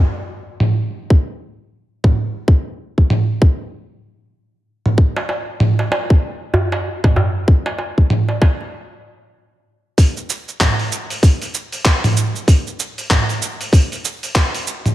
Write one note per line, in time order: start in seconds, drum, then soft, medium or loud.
0.60 mid tom medium
1.10 kick medium
2.04 kick medium
2.04 mid tom medium
2.48 kick loud
2.98 kick medium
3.10 mid tom medium
3.42 kick loud
4.86 mid tom soft
4.98 kick loud
5.16 darbuka tek medium
5.29 darbuka ka medium
5.60 mid tom medium
5.79 darbuka ka medium
5.92 darbuka tek medium
6.10 kick loud
6.54 darbuka ka medium
6.54 darbuka dum medium
6.72 darbuka tek medium
7.04 kick loud
7.04 mid tom medium
7.04 darbuka tek medium
7.16 darbuka dum medium
7.48 kick loud
7.66 darbuka tek medium
7.79 darbuka ka medium
7.98 kick medium
8.10 mid tom medium
8.29 darbuka ka medium
8.42 kick loud
8.42 darbuka tek medium
8.61 darbuka ka soft
9.98 kick loud
9.98 open hi-hat medium
9.98 cabasa soft
10.17 cabasa soft
10.30 cabasa medium
10.48 cabasa soft
10.60 kick loud
10.60 clap loud
10.60 mid tom medium
10.60 open hi-hat medium
10.60 cabasa soft
10.79 open hi-hat soft
10.92 cabasa medium
11.10 open hi-hat soft
11.10 cabasa soft
11.23 kick loud
11.23 open hi-hat medium
11.23 cabasa soft
11.42 open hi-hat soft
11.42 cabasa soft
11.54 cabasa medium
11.72 open hi-hat soft
11.72 cabasa soft
11.85 kick loud
11.85 clap loud
11.85 open hi-hat medium
11.85 cabasa soft
12.04 mid tom medium
12.04 open hi-hat soft
12.04 cabasa soft
12.17 cabasa medium
12.36 cabasa soft
12.48 kick loud
12.48 open hi-hat medium
12.48 cabasa medium
12.67 cabasa soft
12.80 cabasa medium
12.98 open hi-hat soft
12.98 cabasa soft
13.10 kick loud
13.10 clap loud
13.10 mid tom medium
13.10 open hi-hat medium
13.10 cabasa soft
13.29 open hi-hat soft
13.29 cabasa soft
13.42 cabasa medium
13.61 open hi-hat soft
13.61 cabasa soft
13.73 kick loud
13.73 open hi-hat medium
13.73 cabasa soft
13.92 open hi-hat soft
13.92 cabasa soft
14.05 cabasa medium
14.23 open hi-hat soft
14.23 cabasa soft
14.35 kick loud
14.35 clap loud
14.35 open hi-hat medium
14.35 cabasa soft
14.54 open hi-hat soft
14.54 cabasa soft
14.67 cabasa medium
14.86 mid tom medium
14.86 cabasa soft